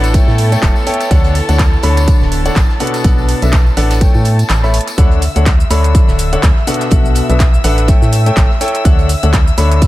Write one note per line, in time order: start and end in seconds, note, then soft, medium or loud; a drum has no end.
0.00 0.20 A1 loud
0.00 4.98 B3 medium
0.00 0.12 D4 medium
0.00 4.98 E4 medium
0.00 0.12 A4 medium
0.00 4.98 A4 medium
0.00 0.12 B4 medium
0.00 4.98 C#5 medium
0.00 0.12 F#5 loud
0.00 4.99 A5 medium
0.00 4.99 A6 medium
0.00 closed hi-hat soft
0.04 tambourine medium
0.14 0.49 A3 medium
0.14 0.49 E4 medium
0.14 0.49 A4 medium
0.14 0.49 C#5 medium
0.14 0.49 G5 medium
0.14 kick loud
0.14 closed hi-hat medium
0.14 tambourine medium
0.28 0.56 A2 loud
0.28 snare soft
0.28 tambourine soft
0.38 closed hi-hat medium
0.38 open hi-hat loud
0.52 0.74 A3 medium
0.52 0.74 E4 medium
0.52 0.74 A4 medium
0.52 0.74 C#5 medium
0.52 0.74 G5 medium
0.52 closed hi-hat medium
0.52 tambourine medium
0.62 0.71 E1 medium
0.62 kick loud
0.62 snare loud
0.62 clap loud
0.62 closed hi-hat soft
0.62 closed hi-hat medium
0.76 snare soft
0.76 tambourine soft
0.86 1.08 E4 medium
0.86 1.08 A4 medium
0.86 1.08 C#5 medium
0.86 1.08 G5 loud
0.86 closed hi-hat medium
0.86 open hi-hat medium
0.94 closed hi-hat medium
1.01 closed hi-hat medium
1.01 tambourine medium
1.11 1.41 D2 loud
1.11 1.33 D3 medium
1.11 1.33 D4 medium
1.11 1.33 A4 medium
1.11 1.33 C#5 medium
1.11 1.33 F#5 loud
1.11 kick loud
1.11 closed hi-hat medium
1.11 tambourine medium
1.24 closed hi-hat soft
1.24 tambourine soft
1.35 closed hi-hat medium
1.35 open hi-hat medium
1.49 1.77 D2 medium
1.49 1.61 D3 medium
1.49 1.61 D4 medium
1.49 1.61 A4 medium
1.49 1.61 C#5 medium
1.49 1.61 F#5 medium
1.49 closed hi-hat medium
1.49 tambourine medium
1.59 kick loud
1.59 snare loud
1.59 clap loud
1.59 closed hi-hat medium
1.59 tambourine medium
1.73 tambourine soft
1.83 2.13 D2 loud
1.83 2.42 D3 medium
1.83 2.42 D4 medium
1.83 2.42 A4 medium
1.83 2.42 C#5 medium
1.83 2.42 B5 loud
1.83 closed hi-hat medium
1.83 open hi-hat medium
1.97 closed hi-hat medium
1.97 tambourine medium
2.08 kick loud
2.08 closed hi-hat medium
2.08 tambourine medium
2.21 2.50 D1 loud
2.21 snare soft
2.21 tambourine soft
2.32 closed hi-hat medium
2.32 open hi-hat loud
2.46 2.58 D3 medium
2.46 2.58 D4 medium
2.46 2.58 A4 medium
2.46 2.58 C#5 medium
2.46 2.58 F#5 medium
2.46 closed hi-hat medium
2.46 tambourine medium
2.56 2.65 A1 medium
2.56 kick loud
2.56 snare loud
2.56 clap loud
2.56 closed hi-hat soft
2.56 closed hi-hat medium
2.56 tambourine medium
2.70 snare soft
2.70 tambourine soft
2.80 3.02 B2 medium
2.80 3.02 D4 medium
2.80 3.02 A4 medium
2.80 3.02 B4 medium
2.80 3.02 F#5 loud
2.80 closed hi-hat medium
2.80 open hi-hat medium
2.87 closed hi-hat medium
2.94 snare soft
2.94 closed hi-hat medium
2.94 tambourine medium
3.04 3.34 B1 loud
3.04 3.39 B2 medium
3.04 3.39 D4 medium
3.04 3.39 A4 medium
3.04 3.39 B4 medium
3.04 3.39 F#5 medium
3.04 kick loud
3.04 closed hi-hat medium
3.18 tambourine soft
3.29 closed hi-hat medium
3.29 open hi-hat medium
3.42 3.71 B1 medium
3.42 3.55 B2 medium
3.42 3.55 D4 medium
3.42 3.55 A4 medium
3.42 3.55 B4 medium
3.42 3.55 E5 medium
3.42 closed hi-hat medium
3.42 tambourine medium
3.52 kick loud
3.52 snare loud
3.52 clap loud
3.52 closed hi-hat medium
3.52 tambourine medium
3.67 tambourine soft
3.77 4.07 A1 loud
3.77 3.99 D4 medium
3.77 3.99 A4 medium
3.77 3.99 B4 medium
3.77 3.99 F#5 loud
3.77 snare medium
3.77 closed hi-hat medium
3.77 open hi-hat medium
3.90 snare medium
3.90 closed hi-hat medium
3.90 tambourine medium
4.01 4.36 A3 medium
4.01 4.36 E4 medium
4.01 4.36 A4 medium
4.01 4.36 C#5 medium
4.01 4.36 G5 medium
4.01 kick loud
4.01 closed hi-hat medium
4.01 tambourine medium
4.14 4.44 A2 loud
4.14 tambourine soft
4.25 closed hi-hat medium
4.25 open hi-hat loud
4.39 closed hi-hat medium
4.39 tambourine medium
4.49 4.80 A1 medium
4.49 snare loud
4.49 clap loud
4.49 closed hi-hat medium
4.49 closed hi-hat soft
4.49 tambourine medium
4.63 4.76 A3 medium
4.63 4.76 E4 medium
4.63 4.76 A4 medium
4.63 4.76 C#5 medium
4.63 4.76 B5 medium
4.63 snare soft
4.63 tambourine soft
4.74 closed hi-hat medium
4.74 open hi-hat medium
4.81 closed hi-hat medium
4.88 closed hi-hat medium
4.88 tambourine medium
4.98 5.28 D2 loud
4.98 5.20 D3 medium
4.98 5.20 D4 medium
4.98 5.20 A4 medium
4.98 5.20 C#5 medium
4.98 9.87 E5 medium
4.98 5.20 F#5 loud
4.98 9.87 E6 medium
4.98 kick loud
4.98 closed hi-hat medium
4.98 shaker soft
5.12 closed hi-hat soft
5.22 closed hi-hat medium
5.22 open hi-hat loud
5.22 shaker medium
5.36 5.65 D2 medium
5.36 5.48 D3 medium
5.36 5.48 D4 medium
5.36 5.48 A4 medium
5.36 5.48 C#5 medium
5.36 5.48 F#5 medium
5.36 closed hi-hat medium
5.36 shaker soft
5.46 kick loud
5.46 snare loud
5.46 clap loud
5.46 closed hi-hat medium
5.46 shaker soft
5.60 shaker soft
5.70 6.01 D2 loud
5.70 6.29 D3 medium
5.70 6.29 D4 medium
5.70 6.29 A4 medium
5.70 6.29 C#5 medium
5.70 6.29 B5 loud
5.70 closed hi-hat medium
5.70 open hi-hat medium
5.70 shaker medium
5.84 closed hi-hat medium
5.84 shaker soft
5.95 kick loud
5.95 closed hi-hat medium
5.95 shaker soft
6.08 6.37 D1 loud
6.08 snare medium
6.08 shaker soft
6.19 closed hi-hat medium
6.19 open hi-hat loud
6.19 shaker medium
6.33 6.45 D3 medium
6.33 6.45 D4 medium
6.33 6.45 A4 medium
6.33 6.45 C#5 medium
6.33 6.45 F#5 loud
6.33 closed hi-hat medium
6.33 shaker soft
6.43 6.52 D2 medium
6.43 kick loud
6.43 snare loud
6.43 clap loud
6.43 closed hi-hat medium
6.43 closed hi-hat soft
6.43 shaker soft
6.57 snare soft
6.67 6.89 B2 medium
6.67 6.89 D4 medium
6.67 6.89 A4 medium
6.67 6.89 B4 medium
6.67 6.89 F#5 loud
6.67 closed hi-hat medium
6.67 open hi-hat medium
6.67 shaker medium
6.74 closed hi-hat medium
6.81 snare soft
6.81 closed hi-hat medium
6.81 shaker soft
6.91 7.22 B1 medium
6.91 7.26 B2 medium
6.91 7.26 D4 medium
6.91 7.26 A4 medium
6.91 7.26 B4 medium
6.91 7.26 F#5 medium
6.91 kick loud
6.91 closed hi-hat medium
6.91 shaker soft
7.05 shaker soft
7.15 closed hi-hat medium
7.15 open hi-hat loud
7.15 shaker medium
7.29 7.58 B1 medium
7.29 7.42 B2 medium
7.29 7.42 D4 medium
7.29 7.42 A4 medium
7.29 7.42 B4 medium
7.29 7.42 E5 medium
7.29 closed hi-hat medium
7.29 shaker soft
7.40 kick loud
7.40 snare loud
7.40 clap loud
7.40 closed hi-hat medium
7.40 shaker soft
7.54 shaker soft
7.64 7.94 A1 loud
7.64 7.86 D4 medium
7.64 7.86 A4 medium
7.64 7.86 B4 medium
7.64 7.86 F#5 loud
7.64 snare soft
7.64 closed hi-hat medium
7.64 open hi-hat loud
7.64 shaker medium
7.78 closed hi-hat medium
7.78 shaker soft
7.88 8.23 A3 medium
7.88 8.23 E4 medium
7.88 8.23 A4 medium
7.88 8.23 C#5 medium
7.88 8.23 G5 medium
7.88 kick loud
7.88 closed hi-hat medium
7.88 shaker soft
8.02 8.31 A2 loud
8.02 snare soft
8.02 shaker soft
8.13 closed hi-hat medium
8.13 open hi-hat loud
8.13 shaker medium
8.26 8.48 A3 medium
8.26 8.48 E4 medium
8.26 8.48 A4 medium
8.26 8.48 C#5 medium
8.26 8.48 G5 medium
8.26 closed hi-hat medium
8.26 shaker soft
8.37 8.45 A1 loud
8.37 kick loud
8.37 snare loud
8.37 clap loud
8.37 closed hi-hat soft
8.37 closed hi-hat medium
8.37 shaker soft
8.50 snare soft
8.61 8.83 E4 medium
8.61 8.83 A4 medium
8.61 8.83 C#5 medium
8.61 8.83 G5 loud
8.61 closed hi-hat medium
8.61 open hi-hat loud
8.61 shaker medium
8.68 closed hi-hat medium
8.75 closed hi-hat medium
8.75 shaker soft
8.85 9.15 D2 medium
8.85 9.07 D3 medium
8.85 9.07 D4 medium
8.85 9.07 A4 medium
8.85 9.07 C#5 medium
8.85 9.07 F#5 loud
8.85 kick loud
8.85 closed hi-hat medium
8.85 shaker soft
8.99 closed hi-hat soft
9.09 closed hi-hat medium
9.09 open hi-hat loud
9.09 shaker medium
9.23 9.52 D2 medium
9.23 9.35 D3 medium
9.23 9.35 D4 medium
9.23 9.35 A4 medium
9.23 9.35 C#5 medium
9.23 9.35 F#5 medium
9.23 closed hi-hat medium
9.23 shaker soft
9.33 kick loud
9.33 snare loud
9.33 clap loud
9.33 closed hi-hat medium
9.33 shaker soft
9.47 shaker soft
9.58 9.87 D2 loud
9.58 9.87 D3 medium
9.58 9.87 D4 medium
9.58 9.87 A4 medium
9.58 9.87 C#5 medium
9.58 9.87 B5 loud
9.58 closed hi-hat medium
9.58 open hi-hat loud
9.58 shaker medium
9.72 closed hi-hat medium
9.72 shaker soft
9.82 kick loud
9.82 closed hi-hat medium
9.82 shaker soft